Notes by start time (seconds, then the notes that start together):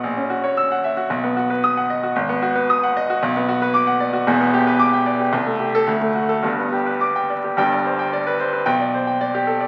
0.04 A#1
0.17 C#4
0.30 F#4
0.44 C#5
0.57 E6
0.72 F#5
0.84 E5
0.97 F#4
1.10 B1
1.24 B3
1.37 F#4
1.50 B4
1.64 D#6
1.77 F#5
1.90 D#5
2.03 F#4
2.16 G#1
2.29 B3
2.42 F#4
2.55 B4
2.70 D#6
2.83 F#5
2.97 D#5
3.10 F#4
3.23 B1
3.37 B3
3.49 F#4
3.62 B4
3.74 D6
3.87 F#5
4.00 D5
4.13 F#4
4.27 E1 E2
4.41 B3
4.54 G4
4.67 B4
4.79 D6
4.93 G5
5.06 D5
5.20 G4
5.33 C2
5.46 A3
5.60 G4
5.75 A4
5.87 D2
6.01 A3
6.15 F#4
6.29 A4
6.43 G1 G2
6.59 B3
6.72 G4
6.86 B4
7.01 D6
7.16 G5
7.30 D5
7.44 G4
7.57 G1 G2 G5
7.72 D5
7.85 C5
7.99 G5
8.13 D5
8.27 B4
8.39 C5
8.53 B4
8.66 B1 G5
8.80 D5
8.94 C5
9.07 G5
9.21 D5
9.35 G4
9.47 A4
9.61 D5